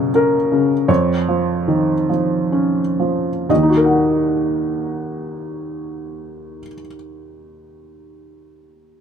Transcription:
0.00 0.85 F#2 soft
0.00 0.92 B2 soft
0.00 0.52 C#3 soft
0.00 0.10 F#4 medium
0.14 0.73 C#4 soft
0.14 0.85 A#4 medium
0.52 0.89 C#3 soft
0.88 3.45 F2 soft
0.88 3.45 C#5 medium
1.28 1.93 F3 soft
1.68 2.09 D#3 soft
2.09 2.81 F3 soft
2.52 3.29 C#4 soft
3.00 3.49 F3 soft
3.49 6.59 D#2 soft
3.49 6.60 D#5 soft
3.56 6.66 D#3 soft
3.63 6.73 D#4 soft
3.69 6.79 F#4 soft
3.77 6.87 A#4 soft
3.84 6.94 F#5 soft

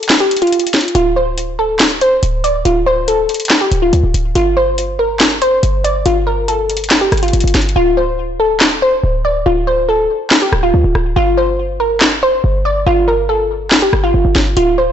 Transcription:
0.00 0.17 A4 medium
0.00 closed hi-hat medium
0.09 snare loud
0.09 clap loud
0.09 closed hi-hat medium
0.20 0.40 G4 medium
0.31 closed hi-hat medium
0.37 closed hi-hat medium
0.42 0.92 F4 medium
0.42 closed hi-hat soft
0.47 closed hi-hat soft
0.52 closed hi-hat medium
0.60 closed hi-hat medium
0.67 closed hi-hat medium
0.74 snare medium
0.74 closed hi-hat medium
0.81 closed hi-hat medium
0.88 closed hi-hat soft
0.95 2.19 D1 loud
0.95 1.15 F4 loud
0.95 closed hi-hat medium
1.16 1.36 C5 medium
1.38 closed hi-hat medium
1.59 1.79 A4 medium
1.79 snare loud
1.79 clap loud
1.79 closed hi-hat medium
2.01 2.41 C5 loud
2.01 closed hi-hat medium
2.23 2.64 D1 loud
2.23 closed hi-hat medium
2.44 2.64 D5 medium
2.44 closed hi-hat medium
2.65 3.27 D1 loud
2.65 2.85 F4 medium
2.65 closed hi-hat medium
2.86 3.06 C5 medium
3.08 3.58 A4 medium
3.08 closed hi-hat medium
3.29 closed hi-hat soft
3.34 closed hi-hat medium
3.40 closed hi-hat medium
3.45 closed hi-hat medium
3.50 snare loud
3.50 clap loud
3.50 closed hi-hat medium
3.61 3.81 G4 medium
3.72 3.92 D1 loud
3.72 closed hi-hat medium
3.82 4.32 F4 medium
3.93 4.03 D2 loud
3.93 closed hi-hat medium
4.04 4.14 D1 loud
4.14 4.35 D1 loud
4.14 closed hi-hat medium
4.35 5.59 G1 loud
4.35 4.55 F4 loud
4.35 closed hi-hat medium
4.57 4.76 C5 medium
4.78 closed hi-hat medium
4.99 5.19 A#4 medium
5.20 snare loud
5.20 clap loud
5.20 closed hi-hat medium
5.42 5.82 C5 medium
5.42 closed hi-hat medium
5.63 6.04 G1 loud
5.63 closed hi-hat medium
5.84 6.04 D5 medium
5.84 closed hi-hat medium
6.06 7.08 G1 loud
6.06 6.25 F4 loud
6.06 closed hi-hat medium
6.27 6.47 A#4 medium
6.48 6.98 A4 medium
6.48 closed hi-hat medium
6.70 closed hi-hat medium
6.77 closed hi-hat medium
6.84 closed hi-hat medium
6.90 snare loud
6.90 clap medium
6.90 closed hi-hat medium
7.01 7.21 G4 medium
7.12 7.32 G1 loud
7.12 cross-stick loud
7.12 closed hi-hat medium
7.17 closed hi-hat medium
7.23 7.73 F4 medium
7.23 closed hi-hat soft
7.28 closed hi-hat soft
7.33 7.44 G1 loud
7.33 closed hi-hat medium
7.40 7.54 G1 loud
7.40 closed hi-hat medium
7.48 closed hi-hat medium
7.55 7.75 G1 loud
7.55 snare medium
7.55 closed hi-hat medium
7.62 closed hi-hat medium
7.69 closed hi-hat soft
7.76 9.00 D1 loud
7.76 7.96 F4 loud
7.97 8.17 C5 medium
8.40 8.59 A4 medium
8.60 snare loud
8.60 clap loud
8.82 9.22 C5 medium
9.04 9.44 D1 loud
9.25 9.44 D5 medium
9.46 10.07 D1 loud
9.46 9.66 F4 medium
9.67 9.87 C5 medium
9.89 10.39 A4 medium
10.30 snare loud
10.30 clap loud
10.42 10.62 G4 medium
10.52 10.73 D1 loud
10.52 cross-stick loud
10.63 11.13 F4 medium
10.74 10.84 D2 loud
10.84 10.94 D1 loud
10.95 11.15 D1 loud
10.95 cross-stick medium
11.16 12.40 G1 loud
11.16 11.36 F4 loud
11.37 11.57 C5 medium
11.80 12.00 A#4 medium
12.01 snare loud
12.01 clap loud
12.23 12.63 C5 loud
12.44 12.85 G1 loud
12.65 12.85 D5 medium
12.87 13.89 G1 loud
12.87 13.06 F4 loud
13.08 13.27 A#4 medium
13.29 13.79 A4 medium
13.71 snare loud
13.71 clap loud
13.82 14.02 G4 medium
13.93 14.13 G1 loud
13.93 cross-stick loud
14.04 14.54 F4 medium
14.14 14.24 G1 loud
14.25 14.35 G1 loud
14.35 14.56 G1 loud
14.35 snare medium
14.57 14.92 D1 loud
14.57 14.76 F4 loud
14.57 closed hi-hat medium
14.78 14.92 C5 medium

